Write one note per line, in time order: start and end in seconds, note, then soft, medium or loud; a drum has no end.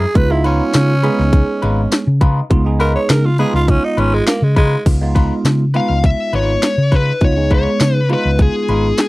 0.00 0.18 G#4 loud
0.14 0.60 C#2 loud
0.14 0.28 G#3 medium
0.14 0.28 B3 medium
0.14 0.28 D#4 medium
0.14 0.28 F4 medium
0.14 0.33 B4 loud
0.14 kick loud
0.14 closed hi-hat medium
0.30 0.92 G#3 medium
0.30 0.92 B3 medium
0.30 0.93 D#4 medium
0.30 0.44 E4 loud
0.30 0.93 F4 medium
0.44 0.64 G#3 medium
0.44 2.18 C#4 loud
0.44 0.63 D#4 medium
0.44 0.63 F4 medium
0.44 0.63 B4 medium
0.44 closed hi-hat medium
0.74 1.08 C#3 loud
0.74 snare loud
0.74 closed hi-hat medium
0.74 tambourine loud
1.03 2.03 G#3 medium
1.03 1.23 G#3 medium
1.03 2.03 B3 medium
1.03 2.03 D#4 medium
1.03 1.22 D#4 medium
1.03 1.22 F4 medium
1.03 2.03 G#4 medium
1.03 1.22 B4 medium
1.03 closed hi-hat medium
1.19 1.41 C#2 loud
1.19 snare soft
1.33 kick medium
1.33 closed hi-hat medium
1.62 1.85 G#1 loud
1.62 1.81 G#3 medium
1.62 1.81 D#4 medium
1.62 1.81 F4 medium
1.62 1.80 B4 medium
1.62 closed hi-hat medium
1.92 snare loud
1.92 closed hi-hat medium
1.92 tambourine loud
2.07 2.40 C#3 loud
2.21 2.40 G#3 medium
2.21 2.40 D#4 medium
2.21 2.40 F4 medium
2.21 2.39 B4 medium
2.21 kick medium
2.21 closed hi-hat medium
2.50 2.95 C#2 loud
2.50 2.63 G#3 medium
2.50 2.63 B3 medium
2.50 2.64 D#4 medium
2.50 2.64 F4 medium
2.50 kick loud
2.50 closed hi-hat medium
2.65 3.27 G#3 medium
2.65 3.28 B3 medium
2.65 3.28 D#4 medium
2.65 3.28 G#4 medium
2.80 2.99 G#3 medium
2.80 2.99 D#4 medium
2.80 2.98 F4 medium
2.80 2.95 A#4 loud
2.80 2.98 B4 medium
2.80 closed hi-hat medium
2.96 3.11 C#5 loud
3.09 3.43 C#3 loud
3.09 3.27 A#4 loud
3.09 snare loud
3.09 closed hi-hat medium
3.09 tambourine loud
3.26 3.38 F4 loud
3.38 4.38 G#3 medium
3.38 3.58 G#3 medium
3.38 4.39 B3 medium
3.38 4.39 D#4 medium
3.38 3.58 D#4 medium
3.38 4.39 F4 medium
3.38 3.58 F4 medium
3.38 3.53 G#4 loud
3.38 3.57 B4 medium
3.38 closed hi-hat medium
3.54 3.76 C#2 loud
3.54 3.71 F4 loud
3.54 snare soft
3.68 3.86 C#4 loud
3.68 kick medium
3.68 closed hi-hat medium
3.85 4.01 D#4 medium
3.97 4.20 G#1 loud
3.97 4.17 G#3 medium
3.97 4.16 C#4 loud
3.97 4.16 D#4 medium
3.97 4.16 F4 medium
3.97 4.16 B4 medium
3.97 closed hi-hat medium
4.14 4.26 G#3 loud
4.27 4.45 A#3 loud
4.27 snare loud
4.27 closed hi-hat medium
4.27 tambourine loud
4.42 4.75 C#3 loud
4.42 4.56 G#3 medium
4.56 4.86 G#3 loud
4.56 4.75 G#3 medium
4.56 4.75 D#4 medium
4.56 4.75 F4 medium
4.56 4.75 B4 medium
4.56 kick medium
4.56 closed hi-hat medium
4.86 5.30 C#2 medium
4.86 4.99 G#3 medium
4.86 4.99 B3 medium
4.86 4.99 D#4 medium
4.86 4.99 F4 medium
4.86 kick loud
4.86 closed hi-hat medium
4.86 crash medium
5.01 5.63 G#3 medium
5.01 5.63 B3 medium
5.01 5.63 D#4 medium
5.01 5.64 F4 medium
5.15 5.34 G#3 medium
5.15 5.34 D#4 medium
5.15 5.34 F4 medium
5.15 5.33 B4 medium
5.15 kick medium
5.15 closed hi-hat medium
5.45 5.78 C#3 medium
5.45 snare loud
5.45 closed hi-hat medium
5.45 tambourine loud
5.74 6.74 G#3 medium
5.74 5.93 G#3 medium
5.74 6.74 B3 medium
5.74 6.74 D#4 medium
5.74 5.93 D#4 medium
5.74 5.93 F4 medium
5.74 6.75 F4 medium
5.74 5.92 B4 medium
5.74 6.05 F5 loud
5.74 closed hi-hat medium
5.90 6.12 C#2 medium
6.04 6.32 E5 loud
6.04 kick medium
6.04 closed hi-hat medium
6.33 6.55 G#1 medium
6.33 6.52 G#3 medium
6.33 6.52 D#4 medium
6.33 6.52 F4 medium
6.33 6.51 B4 medium
6.33 6.95 C#5 medium
6.33 closed hi-hat medium
6.62 snare loud
6.62 closed hi-hat medium
6.62 tambourine loud
6.78 7.11 C#3 medium
6.92 7.11 G#3 medium
6.92 7.11 D#4 medium
6.92 7.10 F4 medium
6.92 7.10 B4 medium
6.92 7.24 B4 medium
6.92 kick medium
6.92 snare soft
6.92 closed hi-hat medium
7.21 7.66 C#2 medium
7.21 7.34 G#3 medium
7.21 7.35 B3 medium
7.21 7.35 D#4 medium
7.21 7.35 F4 medium
7.21 7.50 C#5 loud
7.21 kick loud
7.21 closed hi-hat medium
7.37 7.99 G#3 medium
7.37 7.99 B3 medium
7.37 7.99 D#4 medium
7.37 7.99 G#4 medium
7.51 7.70 G#3 medium
7.51 7.70 D#4 medium
7.51 7.69 F4 medium
7.51 7.69 B4 medium
7.51 7.95 C#5 medium
7.51 kick medium
7.51 closed hi-hat medium
7.80 8.14 C#3 medium
7.80 snare loud
7.80 closed hi-hat medium
7.80 tambourine loud
7.95 8.08 B4 medium
8.09 9.08 G#3 medium
8.09 8.29 G#3 medium
8.09 9.08 B3 medium
8.09 9.08 D#4 medium
8.09 8.29 D#4 medium
8.09 9.08 F4 medium
8.09 8.28 F4 medium
8.09 8.28 B4 medium
8.09 closed hi-hat medium
8.14 8.39 B4 medium
8.25 8.47 C#2 loud
8.39 9.00 G#4 medium
8.39 kick medium
8.39 closed hi-hat medium
8.69 8.91 G#1 medium
8.69 8.88 G#3 medium
8.69 8.88 D#4 medium
8.69 8.87 F4 medium
8.69 8.87 B4 medium
8.69 closed hi-hat medium
8.98 9.08 G#4 medium
8.98 snare loud
8.98 closed hi-hat medium
8.98 tambourine loud